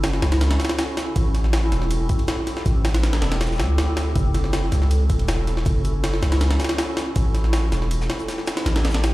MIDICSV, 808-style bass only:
0, 0, Header, 1, 2, 480
1, 0, Start_track
1, 0, Tempo, 375000
1, 1486, Time_signature, 4, 2, 24, 8
1, 11698, End_track
2, 0, Start_track
2, 0, Title_t, "808-style bass"
2, 0, Program_c, 0, 38
2, 0, Note_on_c, 0, 30, 97
2, 268, Note_off_c, 0, 30, 0
2, 285, Note_on_c, 0, 37, 84
2, 747, Note_off_c, 0, 37, 0
2, 1485, Note_on_c, 0, 33, 97
2, 2187, Note_off_c, 0, 33, 0
2, 2202, Note_on_c, 0, 28, 86
2, 2665, Note_off_c, 0, 28, 0
2, 3403, Note_on_c, 0, 33, 101
2, 4106, Note_off_c, 0, 33, 0
2, 4119, Note_on_c, 0, 28, 80
2, 4601, Note_on_c, 0, 38, 93
2, 4620, Note_off_c, 0, 28, 0
2, 5305, Note_off_c, 0, 38, 0
2, 5321, Note_on_c, 0, 30, 98
2, 6025, Note_off_c, 0, 30, 0
2, 6044, Note_on_c, 0, 37, 84
2, 6522, Note_on_c, 0, 28, 92
2, 6542, Note_off_c, 0, 37, 0
2, 7225, Note_off_c, 0, 28, 0
2, 7244, Note_on_c, 0, 30, 96
2, 7946, Note_off_c, 0, 30, 0
2, 7965, Note_on_c, 0, 37, 82
2, 8427, Note_off_c, 0, 37, 0
2, 9164, Note_on_c, 0, 33, 94
2, 9866, Note_off_c, 0, 33, 0
2, 9886, Note_on_c, 0, 28, 83
2, 10347, Note_off_c, 0, 28, 0
2, 11083, Note_on_c, 0, 33, 99
2, 11698, Note_off_c, 0, 33, 0
2, 11698, End_track
0, 0, End_of_file